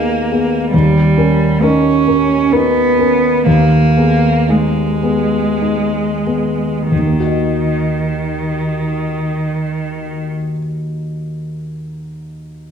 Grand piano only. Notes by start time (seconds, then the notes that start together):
Already playing: D#2 B3 D#4 G#4
0.32 B3 G#4
0.74 D#2
1.17 C#4 A#4
1.63 D#4 A#4
2.08 C#4 A#4
2.52 D#4 A#4
2.99 C#4 A#4
3.47 D#2
3.97 B3 G#4
4.49 D#4 G#4
5.03 B3 G#4
5.62 D#4 G#4
6.26 B3 G#4
6.92 D#2
6.99 D#3
7.06 A#3
7.13 D#4
7.20 F#4
7.27 D#5